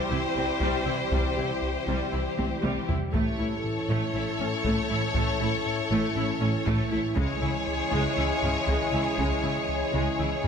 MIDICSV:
0, 0, Header, 1, 12, 480
1, 0, Start_track
1, 0, Tempo, 504202
1, 1063, Time_signature, 4, 2, 24, 8
1, 9974, End_track
2, 0, Start_track
2, 0, Title_t, "Violin section"
2, 0, Program_c, 0, 48
2, 0, Note_on_c, 0, 72, 74
2, 2792, Note_off_c, 0, 72, 0
2, 2984, Note_on_c, 0, 73, 58
2, 6786, Note_off_c, 0, 73, 0
2, 6820, Note_on_c, 0, 73, 69
2, 9974, Note_off_c, 0, 73, 0
2, 9974, End_track
3, 0, Start_track
3, 0, Title_t, "Violin section"
3, 0, Program_c, 1, 48
3, 0, Note_on_c, 1, 67, 66
3, 2759, Note_off_c, 1, 67, 0
3, 2995, Note_on_c, 1, 69, 53
3, 6791, Note_off_c, 1, 69, 0
3, 6828, Note_on_c, 1, 68, 68
3, 9974, Note_off_c, 1, 68, 0
3, 9974, End_track
4, 0, Start_track
4, 0, Title_t, "Ambient pad"
4, 0, Program_c, 2, 92
4, 0, Note_on_c, 2, 52, 68
4, 0, Note_on_c, 2, 64, 66
4, 0, Note_on_c, 2, 67, 68
4, 0, Note_on_c, 2, 72, 66
4, 2938, Note_off_c, 2, 52, 0
4, 2938, Note_off_c, 2, 67, 0
4, 2939, Note_off_c, 2, 64, 0
4, 2979, Note_off_c, 2, 72, 0
4, 2990, Note_on_c, 2, 52, 66
4, 2994, Note_on_c, 2, 64, 66
4, 2995, Note_on_c, 2, 69, 61
4, 2996, Note_on_c, 2, 73, 63
4, 6789, Note_off_c, 2, 52, 0
4, 6791, Note_off_c, 2, 64, 0
4, 6811, Note_off_c, 2, 73, 0
4, 6821, Note_on_c, 2, 68, 69
4, 6823, Note_on_c, 2, 73, 69
4, 6825, Note_on_c, 2, 52, 75
4, 6828, Note_on_c, 2, 64, 74
4, 6829, Note_off_c, 2, 69, 0
4, 9974, Note_off_c, 2, 52, 0
4, 9974, Note_off_c, 2, 64, 0
4, 9974, Note_off_c, 2, 68, 0
4, 9974, Note_off_c, 2, 73, 0
4, 9974, End_track
5, 0, Start_track
5, 0, Title_t, "French horn section"
5, 0, Program_c, 3, 60
5, 0, Note_on_c, 3, 60, 65
5, 0, Note_on_c, 3, 64, 61
5, 2709, Note_off_c, 3, 64, 0
5, 2710, Note_off_c, 3, 60, 0
5, 2989, Note_on_c, 3, 61, 58
5, 2989, Note_on_c, 3, 64, 55
5, 6788, Note_off_c, 3, 61, 0
5, 6788, Note_off_c, 3, 64, 0
5, 6826, Note_on_c, 3, 61, 66
5, 6828, Note_on_c, 3, 64, 66
5, 9974, Note_off_c, 3, 61, 0
5, 9974, Note_off_c, 3, 64, 0
5, 9974, End_track
6, 0, Start_track
6, 0, Title_t, "Viola section"
6, 0, Program_c, 4, 48
6, 105, Note_on_c, 4, 64, 54
6, 181, Note_off_c, 4, 64, 0
6, 349, Note_on_c, 4, 60, 52
6, 425, Note_off_c, 4, 60, 0
6, 586, Note_on_c, 4, 55, 72
6, 808, Note_off_c, 4, 55, 0
6, 819, Note_on_c, 4, 64, 51
6, 895, Note_off_c, 4, 64, 0
6, 1070, Note_on_c, 4, 55, 55
6, 1290, Note_off_c, 4, 55, 0
6, 1314, Note_on_c, 4, 64, 38
6, 1390, Note_off_c, 4, 64, 0
6, 1791, Note_on_c, 4, 55, 60
6, 2011, Note_off_c, 4, 55, 0
6, 2022, Note_on_c, 4, 64, 39
6, 2099, Note_off_c, 4, 64, 0
6, 2262, Note_on_c, 4, 60, 46
6, 2338, Note_off_c, 4, 60, 0
6, 2499, Note_on_c, 4, 55, 60
6, 2724, Note_off_c, 4, 55, 0
6, 2739, Note_on_c, 4, 64, 43
6, 2816, Note_off_c, 4, 64, 0
6, 2977, Note_on_c, 4, 57, 63
6, 3203, Note_off_c, 4, 57, 0
6, 3215, Note_on_c, 4, 64, 44
6, 3292, Note_off_c, 4, 64, 0
6, 3700, Note_on_c, 4, 57, 69
6, 3925, Note_off_c, 4, 57, 0
6, 3949, Note_on_c, 4, 64, 53
6, 4025, Note_off_c, 4, 64, 0
6, 4186, Note_on_c, 4, 61, 56
6, 4263, Note_off_c, 4, 61, 0
6, 4425, Note_on_c, 4, 57, 69
6, 4647, Note_off_c, 4, 57, 0
6, 4663, Note_on_c, 4, 64, 58
6, 4739, Note_off_c, 4, 64, 0
6, 4904, Note_on_c, 4, 57, 71
6, 5127, Note_off_c, 4, 57, 0
6, 5146, Note_on_c, 4, 64, 55
6, 5223, Note_off_c, 4, 64, 0
6, 5625, Note_on_c, 4, 57, 75
6, 5847, Note_off_c, 4, 57, 0
6, 5866, Note_on_c, 4, 64, 60
6, 5942, Note_off_c, 4, 64, 0
6, 6099, Note_on_c, 4, 61, 62
6, 6176, Note_off_c, 4, 61, 0
6, 6343, Note_on_c, 4, 57, 81
6, 6566, Note_off_c, 4, 57, 0
6, 6579, Note_on_c, 4, 64, 63
6, 6655, Note_off_c, 4, 64, 0
6, 6820, Note_on_c, 4, 56, 74
6, 7045, Note_off_c, 4, 56, 0
6, 7064, Note_on_c, 4, 64, 56
6, 7140, Note_off_c, 4, 64, 0
6, 7541, Note_on_c, 4, 56, 76
6, 7765, Note_off_c, 4, 56, 0
6, 7782, Note_on_c, 4, 64, 53
6, 7859, Note_off_c, 4, 64, 0
6, 8026, Note_on_c, 4, 61, 52
6, 8102, Note_off_c, 4, 61, 0
6, 8266, Note_on_c, 4, 56, 71
6, 8488, Note_off_c, 4, 56, 0
6, 8507, Note_on_c, 4, 64, 47
6, 8583, Note_off_c, 4, 64, 0
6, 8741, Note_on_c, 4, 56, 57
6, 8965, Note_off_c, 4, 56, 0
6, 8982, Note_on_c, 4, 64, 37
6, 9058, Note_off_c, 4, 64, 0
6, 9458, Note_on_c, 4, 56, 59
6, 9683, Note_off_c, 4, 56, 0
6, 9699, Note_on_c, 4, 64, 44
6, 9775, Note_off_c, 4, 64, 0
6, 9938, Note_on_c, 4, 61, 40
6, 9974, Note_off_c, 4, 61, 0
6, 9974, End_track
7, 0, Start_track
7, 0, Title_t, "Synth pluck"
7, 0, Program_c, 5, 84
7, 95, Note_on_c, 5, 52, 61
7, 242, Note_off_c, 5, 52, 0
7, 340, Note_on_c, 5, 52, 60
7, 485, Note_off_c, 5, 52, 0
7, 579, Note_on_c, 5, 48, 82
7, 724, Note_off_c, 5, 48, 0
7, 822, Note_on_c, 5, 55, 57
7, 966, Note_off_c, 5, 55, 0
7, 1056, Note_on_c, 5, 48, 80
7, 1202, Note_off_c, 5, 48, 0
7, 1304, Note_on_c, 5, 55, 56
7, 1448, Note_off_c, 5, 55, 0
7, 1792, Note_on_c, 5, 48, 82
7, 1933, Note_off_c, 5, 48, 0
7, 2033, Note_on_c, 5, 52, 58
7, 2174, Note_off_c, 5, 52, 0
7, 2280, Note_on_c, 5, 52, 53
7, 2419, Note_off_c, 5, 52, 0
7, 2518, Note_on_c, 5, 48, 81
7, 2657, Note_off_c, 5, 48, 0
7, 2757, Note_on_c, 5, 55, 57
7, 2897, Note_off_c, 5, 55, 0
7, 2997, Note_on_c, 5, 57, 81
7, 3137, Note_off_c, 5, 57, 0
7, 3239, Note_on_c, 5, 64, 57
7, 3379, Note_off_c, 5, 64, 0
7, 3709, Note_on_c, 5, 57, 81
7, 3851, Note_off_c, 5, 57, 0
7, 3957, Note_on_c, 5, 61, 65
7, 4097, Note_off_c, 5, 61, 0
7, 4197, Note_on_c, 5, 61, 59
7, 4337, Note_off_c, 5, 61, 0
7, 4435, Note_on_c, 5, 57, 89
7, 4575, Note_off_c, 5, 57, 0
7, 4676, Note_on_c, 5, 64, 60
7, 4816, Note_off_c, 5, 64, 0
7, 4910, Note_on_c, 5, 57, 85
7, 5052, Note_off_c, 5, 57, 0
7, 5145, Note_on_c, 5, 64, 60
7, 5288, Note_off_c, 5, 64, 0
7, 5627, Note_on_c, 5, 57, 84
7, 5769, Note_off_c, 5, 57, 0
7, 5869, Note_on_c, 5, 61, 69
7, 6011, Note_off_c, 5, 61, 0
7, 6104, Note_on_c, 5, 61, 64
7, 6248, Note_off_c, 5, 61, 0
7, 6346, Note_on_c, 5, 57, 92
7, 6489, Note_off_c, 5, 57, 0
7, 6588, Note_on_c, 5, 64, 66
7, 6731, Note_off_c, 5, 64, 0
7, 6827, Note_on_c, 5, 49, 89
7, 6970, Note_off_c, 5, 49, 0
7, 7073, Note_on_c, 5, 56, 63
7, 7214, Note_off_c, 5, 56, 0
7, 7543, Note_on_c, 5, 49, 90
7, 7687, Note_off_c, 5, 49, 0
7, 7780, Note_on_c, 5, 52, 66
7, 7925, Note_off_c, 5, 52, 0
7, 8021, Note_on_c, 5, 52, 62
7, 8166, Note_off_c, 5, 52, 0
7, 8261, Note_on_c, 5, 49, 87
7, 8406, Note_off_c, 5, 49, 0
7, 8504, Note_on_c, 5, 56, 60
7, 8648, Note_off_c, 5, 56, 0
7, 8743, Note_on_c, 5, 49, 87
7, 8887, Note_off_c, 5, 49, 0
7, 8982, Note_on_c, 5, 56, 62
7, 9126, Note_off_c, 5, 56, 0
7, 9454, Note_on_c, 5, 49, 83
7, 9601, Note_off_c, 5, 49, 0
7, 9696, Note_on_c, 5, 52, 61
7, 9842, Note_off_c, 5, 52, 0
7, 9938, Note_on_c, 5, 52, 57
7, 9974, Note_off_c, 5, 52, 0
7, 9974, End_track
8, 0, Start_track
8, 0, Title_t, "Trombone section"
8, 0, Program_c, 6, 61
8, 0, Note_on_c, 6, 52, 69
8, 0, Note_on_c, 6, 55, 67
8, 2711, Note_off_c, 6, 52, 0
8, 2711, Note_off_c, 6, 55, 0
8, 2984, Note_on_c, 6, 57, 55
8, 2985, Note_on_c, 6, 52, 53
8, 6786, Note_off_c, 6, 52, 0
8, 6786, Note_off_c, 6, 57, 0
8, 6821, Note_on_c, 6, 52, 70
8, 6829, Note_on_c, 6, 56, 72
8, 9974, Note_off_c, 6, 52, 0
8, 9974, Note_off_c, 6, 56, 0
8, 9974, End_track
9, 0, Start_track
9, 0, Title_t, "Cello section"
9, 0, Program_c, 7, 48
9, 105, Note_on_c, 7, 48, 51
9, 181, Note_off_c, 7, 48, 0
9, 344, Note_on_c, 7, 48, 51
9, 420, Note_off_c, 7, 48, 0
9, 585, Note_on_c, 7, 48, 62
9, 661, Note_off_c, 7, 48, 0
9, 830, Note_on_c, 7, 48, 46
9, 906, Note_off_c, 7, 48, 0
9, 1070, Note_on_c, 7, 48, 61
9, 1146, Note_off_c, 7, 48, 0
9, 1309, Note_on_c, 7, 48, 40
9, 1385, Note_off_c, 7, 48, 0
9, 1787, Note_on_c, 7, 48, 59
9, 1864, Note_off_c, 7, 48, 0
9, 2034, Note_on_c, 7, 48, 38
9, 2110, Note_off_c, 7, 48, 0
9, 2268, Note_on_c, 7, 48, 42
9, 2344, Note_off_c, 7, 48, 0
9, 2517, Note_on_c, 7, 48, 57
9, 2593, Note_off_c, 7, 48, 0
9, 2759, Note_on_c, 7, 48, 43
9, 2835, Note_off_c, 7, 48, 0
9, 2994, Note_on_c, 7, 45, 63
9, 3070, Note_off_c, 7, 45, 0
9, 3238, Note_on_c, 7, 45, 46
9, 3314, Note_off_c, 7, 45, 0
9, 3706, Note_on_c, 7, 45, 62
9, 3782, Note_off_c, 7, 45, 0
9, 3945, Note_on_c, 7, 45, 47
9, 4021, Note_off_c, 7, 45, 0
9, 4185, Note_on_c, 7, 45, 52
9, 4261, Note_off_c, 7, 45, 0
9, 4427, Note_on_c, 7, 45, 73
9, 4503, Note_off_c, 7, 45, 0
9, 4667, Note_on_c, 7, 45, 55
9, 4743, Note_off_c, 7, 45, 0
9, 4900, Note_on_c, 7, 45, 76
9, 4976, Note_off_c, 7, 45, 0
9, 5146, Note_on_c, 7, 45, 56
9, 5222, Note_off_c, 7, 45, 0
9, 5622, Note_on_c, 7, 45, 80
9, 5698, Note_off_c, 7, 45, 0
9, 5862, Note_on_c, 7, 45, 55
9, 5939, Note_off_c, 7, 45, 0
9, 6104, Note_on_c, 7, 45, 63
9, 6180, Note_off_c, 7, 45, 0
9, 6341, Note_on_c, 7, 45, 80
9, 6417, Note_off_c, 7, 45, 0
9, 6585, Note_on_c, 7, 45, 60
9, 6661, Note_off_c, 7, 45, 0
9, 6817, Note_on_c, 7, 49, 80
9, 6893, Note_off_c, 7, 49, 0
9, 7069, Note_on_c, 7, 49, 53
9, 7145, Note_off_c, 7, 49, 0
9, 7541, Note_on_c, 7, 49, 68
9, 7617, Note_off_c, 7, 49, 0
9, 7783, Note_on_c, 7, 49, 48
9, 7859, Note_off_c, 7, 49, 0
9, 8023, Note_on_c, 7, 49, 50
9, 8099, Note_off_c, 7, 49, 0
9, 8264, Note_on_c, 7, 49, 66
9, 8341, Note_off_c, 7, 49, 0
9, 8495, Note_on_c, 7, 49, 45
9, 8571, Note_off_c, 7, 49, 0
9, 8734, Note_on_c, 7, 49, 58
9, 8810, Note_off_c, 7, 49, 0
9, 8974, Note_on_c, 7, 49, 40
9, 9050, Note_off_c, 7, 49, 0
9, 9452, Note_on_c, 7, 49, 54
9, 9528, Note_off_c, 7, 49, 0
9, 9692, Note_on_c, 7, 49, 41
9, 9768, Note_off_c, 7, 49, 0
9, 9926, Note_on_c, 7, 49, 41
9, 9974, Note_off_c, 7, 49, 0
9, 9974, End_track
10, 0, Start_track
10, 0, Title_t, "Analog synth bass"
10, 0, Program_c, 8, 38
10, 101, Note_on_c, 8, 36, 58
10, 246, Note_off_c, 8, 36, 0
10, 339, Note_on_c, 8, 36, 55
10, 484, Note_off_c, 8, 36, 0
10, 577, Note_on_c, 8, 36, 87
10, 723, Note_off_c, 8, 36, 0
10, 816, Note_on_c, 8, 48, 58
10, 962, Note_off_c, 8, 48, 0
10, 1061, Note_on_c, 8, 36, 79
10, 1206, Note_off_c, 8, 36, 0
10, 1307, Note_on_c, 8, 48, 56
10, 1450, Note_off_c, 8, 48, 0
10, 1544, Note_on_c, 8, 36, 60
10, 1688, Note_off_c, 8, 36, 0
10, 1781, Note_on_c, 8, 36, 82
10, 1926, Note_off_c, 8, 36, 0
10, 2030, Note_on_c, 8, 36, 58
10, 2172, Note_off_c, 8, 36, 0
10, 2272, Note_on_c, 8, 36, 52
10, 2413, Note_off_c, 8, 36, 0
10, 2512, Note_on_c, 8, 36, 79
10, 2653, Note_off_c, 8, 36, 0
10, 2754, Note_on_c, 8, 48, 56
10, 2895, Note_off_c, 8, 48, 0
10, 2984, Note_on_c, 8, 45, 80
10, 3128, Note_off_c, 8, 45, 0
10, 3229, Note_on_c, 8, 57, 53
10, 3371, Note_off_c, 8, 57, 0
10, 3469, Note_on_c, 8, 45, 66
10, 3611, Note_off_c, 8, 45, 0
10, 3700, Note_on_c, 8, 45, 89
10, 3845, Note_off_c, 8, 45, 0
10, 3940, Note_on_c, 8, 45, 60
10, 4085, Note_off_c, 8, 45, 0
10, 4184, Note_on_c, 8, 45, 56
10, 4328, Note_off_c, 8, 45, 0
10, 4421, Note_on_c, 8, 45, 84
10, 4566, Note_off_c, 8, 45, 0
10, 4663, Note_on_c, 8, 57, 64
10, 4807, Note_off_c, 8, 57, 0
10, 4901, Note_on_c, 8, 45, 81
10, 5046, Note_off_c, 8, 45, 0
10, 5143, Note_on_c, 8, 57, 59
10, 5287, Note_off_c, 8, 57, 0
10, 5388, Note_on_c, 8, 45, 68
10, 5530, Note_off_c, 8, 45, 0
10, 5625, Note_on_c, 8, 45, 88
10, 5769, Note_off_c, 8, 45, 0
10, 5869, Note_on_c, 8, 45, 60
10, 6011, Note_off_c, 8, 45, 0
10, 6111, Note_on_c, 8, 45, 60
10, 6253, Note_off_c, 8, 45, 0
10, 6350, Note_on_c, 8, 45, 91
10, 6492, Note_off_c, 8, 45, 0
10, 6592, Note_on_c, 8, 57, 66
10, 6733, Note_off_c, 8, 57, 0
10, 6826, Note_on_c, 8, 37, 83
10, 6969, Note_off_c, 8, 37, 0
10, 7069, Note_on_c, 8, 49, 57
10, 7211, Note_off_c, 8, 49, 0
10, 7302, Note_on_c, 8, 37, 64
10, 7447, Note_off_c, 8, 37, 0
10, 7540, Note_on_c, 8, 37, 88
10, 7685, Note_off_c, 8, 37, 0
10, 7784, Note_on_c, 8, 37, 63
10, 7927, Note_off_c, 8, 37, 0
10, 8018, Note_on_c, 8, 37, 63
10, 8164, Note_off_c, 8, 37, 0
10, 8255, Note_on_c, 8, 37, 83
10, 8402, Note_off_c, 8, 37, 0
10, 8496, Note_on_c, 8, 49, 62
10, 8642, Note_off_c, 8, 49, 0
10, 8735, Note_on_c, 8, 37, 79
10, 8882, Note_off_c, 8, 37, 0
10, 8981, Note_on_c, 8, 49, 58
10, 9126, Note_off_c, 8, 49, 0
10, 9222, Note_on_c, 8, 37, 63
10, 9366, Note_off_c, 8, 37, 0
10, 9465, Note_on_c, 8, 37, 86
10, 9608, Note_off_c, 8, 37, 0
10, 9704, Note_on_c, 8, 37, 63
10, 9848, Note_off_c, 8, 37, 0
10, 9945, Note_on_c, 8, 37, 61
10, 9974, Note_off_c, 8, 37, 0
10, 9974, End_track
11, 0, Start_track
11, 0, Title_t, "Double bass section"
11, 0, Program_c, 10, 48
11, 96, Note_on_c, 10, 36, 51
11, 172, Note_off_c, 10, 36, 0
11, 344, Note_on_c, 10, 36, 50
11, 420, Note_off_c, 10, 36, 0
11, 576, Note_on_c, 10, 36, 62
11, 652, Note_off_c, 10, 36, 0
11, 818, Note_on_c, 10, 36, 47
11, 894, Note_off_c, 10, 36, 0
11, 1062, Note_on_c, 10, 36, 60
11, 1138, Note_off_c, 10, 36, 0
11, 1314, Note_on_c, 10, 36, 40
11, 1391, Note_off_c, 10, 36, 0
11, 1789, Note_on_c, 10, 36, 56
11, 1865, Note_off_c, 10, 36, 0
11, 2041, Note_on_c, 10, 36, 36
11, 2117, Note_off_c, 10, 36, 0
11, 2274, Note_on_c, 10, 36, 41
11, 2350, Note_off_c, 10, 36, 0
11, 2506, Note_on_c, 10, 36, 56
11, 2582, Note_off_c, 10, 36, 0
11, 2755, Note_on_c, 10, 36, 41
11, 2832, Note_off_c, 10, 36, 0
11, 2993, Note_on_c, 10, 33, 64
11, 3069, Note_off_c, 10, 33, 0
11, 3234, Note_on_c, 10, 33, 46
11, 3310, Note_off_c, 10, 33, 0
11, 3713, Note_on_c, 10, 33, 72
11, 3789, Note_off_c, 10, 33, 0
11, 3946, Note_on_c, 10, 33, 47
11, 4022, Note_off_c, 10, 33, 0
11, 4184, Note_on_c, 10, 33, 51
11, 4260, Note_off_c, 10, 33, 0
11, 4425, Note_on_c, 10, 33, 74
11, 4501, Note_off_c, 10, 33, 0
11, 4661, Note_on_c, 10, 33, 56
11, 4737, Note_off_c, 10, 33, 0
11, 4888, Note_on_c, 10, 33, 79
11, 4964, Note_off_c, 10, 33, 0
11, 5137, Note_on_c, 10, 33, 57
11, 5213, Note_off_c, 10, 33, 0
11, 5621, Note_on_c, 10, 33, 80
11, 5697, Note_off_c, 10, 33, 0
11, 5862, Note_on_c, 10, 33, 58
11, 5938, Note_off_c, 10, 33, 0
11, 6094, Note_on_c, 10, 33, 62
11, 6170, Note_off_c, 10, 33, 0
11, 6339, Note_on_c, 10, 33, 82
11, 6415, Note_off_c, 10, 33, 0
11, 6585, Note_on_c, 10, 33, 64
11, 6661, Note_off_c, 10, 33, 0
11, 6819, Note_on_c, 10, 37, 81
11, 6895, Note_off_c, 10, 37, 0
11, 7057, Note_on_c, 10, 37, 59
11, 7133, Note_off_c, 10, 37, 0
11, 7541, Note_on_c, 10, 37, 72
11, 7617, Note_off_c, 10, 37, 0
11, 7777, Note_on_c, 10, 37, 47
11, 7853, Note_off_c, 10, 37, 0
11, 8021, Note_on_c, 10, 37, 51
11, 8097, Note_off_c, 10, 37, 0
11, 8258, Note_on_c, 10, 37, 65
11, 8334, Note_off_c, 10, 37, 0
11, 8496, Note_on_c, 10, 37, 49
11, 8573, Note_off_c, 10, 37, 0
11, 8739, Note_on_c, 10, 37, 62
11, 8815, Note_off_c, 10, 37, 0
11, 8970, Note_on_c, 10, 37, 41
11, 9046, Note_off_c, 10, 37, 0
11, 9454, Note_on_c, 10, 37, 58
11, 9530, Note_off_c, 10, 37, 0
11, 9698, Note_on_c, 10, 37, 39
11, 9774, Note_off_c, 10, 37, 0
11, 9936, Note_on_c, 10, 37, 41
11, 9974, Note_off_c, 10, 37, 0
11, 9974, End_track
12, 0, Start_track
12, 0, Title_t, "Taiko and cinematic ensemble drums"
12, 575, Note_on_c, 9, 41, 73
12, 670, Note_off_c, 9, 41, 0
12, 1064, Note_on_c, 9, 41, 90
12, 1159, Note_off_c, 9, 41, 0
12, 2272, Note_on_c, 9, 48, 74
12, 2368, Note_off_c, 9, 48, 0
12, 2508, Note_on_c, 9, 48, 75
12, 2603, Note_off_c, 9, 48, 0
12, 2751, Note_on_c, 9, 43, 83
12, 2846, Note_off_c, 9, 43, 0
12, 2991, Note_on_c, 9, 41, 87
12, 3087, Note_off_c, 9, 41, 0
12, 4421, Note_on_c, 9, 41, 79
12, 4516, Note_off_c, 9, 41, 0
12, 4899, Note_on_c, 9, 41, 94
12, 4994, Note_off_c, 9, 41, 0
12, 6346, Note_on_c, 9, 41, 80
12, 6441, Note_off_c, 9, 41, 0
12, 6828, Note_on_c, 9, 41, 91
12, 6924, Note_off_c, 9, 41, 0
12, 8028, Note_on_c, 9, 45, 48
12, 8123, Note_off_c, 9, 45, 0
12, 8267, Note_on_c, 9, 41, 72
12, 8363, Note_off_c, 9, 41, 0
12, 8743, Note_on_c, 9, 41, 83
12, 8838, Note_off_c, 9, 41, 0
12, 9940, Note_on_c, 9, 45, 77
12, 9974, Note_off_c, 9, 45, 0
12, 9974, End_track
0, 0, End_of_file